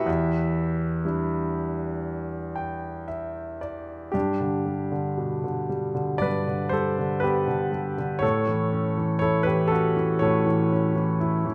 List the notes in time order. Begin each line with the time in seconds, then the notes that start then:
Already playing: E4 G4 B4 E5
0.06 E2
1.05 G3 D4 E4
2.56 G5
3.08 E5
3.61 D5
4.12 G2 D4 G4
4.40 D3
4.66 G3
4.92 D3
5.17 B2
5.44 D3
5.69 G3
5.95 D3
6.18 G2 B4 D5
6.48 D3
6.69 G3 A4 C5
6.99 D3
7.20 B3 G4 B4
7.48 D3
7.72 G3
7.98 D3
8.19 A2 A4 C#5
8.47 E3
8.72 C#4
8.97 E3
9.19 E4 A4 C#5
9.43 E3 G4 B4
9.68 C#4 A4
9.72 F#4
9.97 E3
10.19 A2 A4 C#5
10.46 E3
10.72 C#4
10.96 E3
11.20 E4
11.45 E3